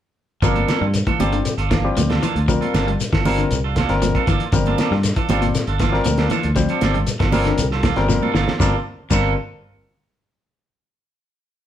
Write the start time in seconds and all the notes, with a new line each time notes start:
0.42 G1 F3 G3 A#3 C4 D4 F4 A4 A#4, kick, closed hi-hat, shekere
0.55 D4 F4 A4, closed hi-hat, high conga
0.68 A#3 F4 A4, snare, closed hi-hat, high conga, shekere
0.81 G2 G3, low conga
0.94 closed hi-hat, shekere
1.07 E3 D4 F4 A4, kick, closed hi-hat, high conga
1.19 G1 G3 A#3 C4 F4 G4 A4, muted clean electric guitar stroke, closed hi-hat, high conga, low conga, shekere
1.32 D3, closed hi-hat
1.45 closed hi-hat, shekere
1.58 G1 D4 F4 A4, closed hi-hat
1.70 E3 A#3 D4 F4, kick, snare, closed hi-hat, high conga, shekere
1.84 G3 C4 F4 G4
1.97 D2 F3, closed hi-hat, high conga, shekere
2.10 D4 F4 A4, snare, closed hi-hat, high conga
2.22 E3 A#3 D4 F4 A4, closed hi-hat, high conga, low conga, shekere
2.35 D2, closed hi-hat
2.48 F3 G3 C4 F4 A#4, kick, closed hi-hat, shekere
2.61 F4 A4, muted clean electric guitar stroke, closed hi-hat, high conga
2.74 G1 A#3 D4 F4 A4, snare, closed hi-hat, high conga, shekere
2.87 G3, closed hi-hat
3.00 closed hi-hat, shekere
3.12 G1 E3 D4 F4 A4, kick, snare, closed hi-hat
3.25 G3 A#3 C4 F4 A4 A#4, muted clean electric guitar stroke, open hi-hat, high conga, low conga, shekere
3.38 D3, closed hi-hat
3.51 C2, closed hi-hat, shekere
3.64 D4 F4 A4
3.76 A#3 D4 F4 A4, kick, snare, closed hi-hat, high conga, shekere
3.89 G1 G3 C4 F4 A#4, snare, closed hi-hat
4.02 F3, closed hi-hat, high conga, shekere
4.15 D4 F4 A4, kick, closed hi-hat
4.27 G1 E3 A#3 D4 F4 A4, kick, closed hi-hat, low conga, shekere
4.40 closed hi-hat
4.52 G1 F3 G3 C4 F4 A#4, kick, closed hi-hat, shekere
4.66 D4 F4 A4, closed hi-hat, high conga
4.78 A#3 D4 F4 A4, snare, closed hi-hat, high conga, shekere
4.91 G2 G3, snare
5.03 snare, closed hi-hat, shekere
5.16 E3 D4 F4 A4, kick, closed hi-hat
5.29 G1 G3 A#3 C4 D4 F4 G4 A4, closed hi-hat, high conga, low conga, shekere
5.42 A#2, closed hi-hat
5.55 snare, closed hi-hat, shekere
5.67 G1 D4 F4 A4, closed hi-hat
5.79 E3 A#3 D4 F4 A4, kick, snare, closed hi-hat, high conga, shekere
5.92 G3 C4 F4 A#4, snare
6.04 D2 F3, closed hi-hat, high conga, shekere
6.17 D4 F4 A4, snare, closed hi-hat, high conga
6.30 E3 A#3 D4 F4 A4, snare, closed hi-hat, high conga, low conga, shekere
6.43 D2, closed hi-hat
6.56 F3 G3 C4 F4 C5, kick, snare, closed hi-hat, shekere
6.69 D4 F4 A4, closed hi-hat
6.81 G1 A#3 D4 F4 A4, snare, closed hi-hat, high conga, shekere
6.94 G3, closed hi-hat, low conga
7.07 closed hi-hat, shekere
7.19 G1 E3 D4 F4 A4, kick, snare, closed hi-hat
7.32 G3 A#3 C4 D4 F4 A4 A#4, open hi-hat, high conga, low conga, shekere
7.45 D3, snare, closed hi-hat
7.58 C2, closed hi-hat, shekere
7.71 F4 A4, snare
7.83 E3 A#3 F4 A4, kick, snare, closed hi-hat, high conga, shekere
7.96 G1 G3 C4 F4 A#4, snare, closed hi-hat
8.09 F3, snare, high conga, shekere
8.23 D4 F4 A4, high conga
8.34 G1 E3 A#3 D4 F4 A4, snare, shekere
8.48 snare, low conga
8.59 G1 G2 G3 A#3 C4 D4 F4 A4 A#4, kick, snare, low conga, shekere
9.10 G1 G2 G3 A#3 C4 D4 F4 A4 A#4, kick, crash, low conga, shekere